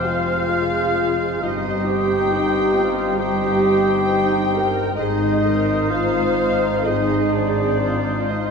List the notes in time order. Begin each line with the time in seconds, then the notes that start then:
Already playing: F1 F2 C3 G#3 C4 F4 G4 C5 F5 F6
0.04 G#3 F4 F5
0.27 F4
0.50 G#4 C5
0.74 G#4
0.97 F5
1.20 G#4
1.41 G1 G2 C4 D#4 G4 C5 D#5 D#6
1.65 G3
1.85 C4 G4 G5
2.10 G4
2.32 D#4 C5
2.75 F4 G5
2.98 C5
3.18 G2 G4 C5 G5 D#6
3.42 G3
3.65 C4
4.10 D#4 C5
4.55 A#4
4.77 C5
4.97 G#1 G#2 C4 D#4 G#4 C5 D#5 D#6
5.22 D#3
5.45 C4 A#4
5.90 F4 C5 F5
6.61 C5
6.83 G#2 D#4 G#4 C5 D#5 D#6
6.88 D#4
7.09 D#3
7.33 C4 D4 D5
7.82 F4 C5
8.29 D#4 D#5